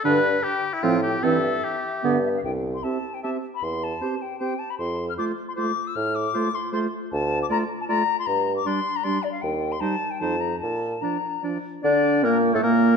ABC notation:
X:1
M:3/4
L:1/16
Q:1/4=153
K:C
V:1 name="Flute"
d4 g8 | e8- e2 e f | g3 c' a3 g a3 b | c'2 a4 g2 g2 a b |
c'3 f' d'3 c' d'3 e' | f'2 d'4 c'2 c'2 z2 | [K:Bb] a3 d' b3 a b3 c' | b3 d' c'3 b c'2 d f |
g3 c' a3 g a2 b2 | a4 b4 z4 | d4 B3 A B4 |]
V:2 name="Oboe"
B4 G3 E F2 G2 | A4 G6 z2 | z4 e4 e4 | z4 c4 c4 |
z4 c4 c4 | z4 c4 c4 | [K:Bb] z4 d4 d4 | z4 d4 d4 |
z4 c4 c4 | z4 d4 d4 | d4 B3 A B4 |]
V:3 name="Clarinet"
D2 z6 C2 z2 | C2 z6 B,2 z2 | z4 G4 G4 | z4 G4 G4 |
z4 F4 F4 | z4 F4 F4 | [K:Bb] z4 F4 F4 | z4 D4 D4 |
z4 E4 E4 | z4 D4 D4 | D4 B,3 A, B,4 |]
V:4 name="French horn"
D,2 z6 F,2 z2 | E,2 z6 D,2 z2 | z4 C4 C4 | z4 C4 C4 |
z4 A,4 A,4 | z4 A,4 A,4 | [K:Bb] z4 A,4 A,4 | z4 G,4 G,4 |
z4 G,4 F,4 | z4 F,4 F,4 | D4 B,3 A, B,4 |]
V:5 name="Bassoon" clef=bass
G,,4 z4 A,,4 | G,,4 z4 G,,4 | C,,4 z8 | E,,4 z8 |
F,,4 z8 | A,,4 z8 | [K:Bb] D,,4 z8 | G,,4 z8 |
E,,4 z4 F,,4 | B,,4 z8 | D,4 B,,3 A,, B,,4 |]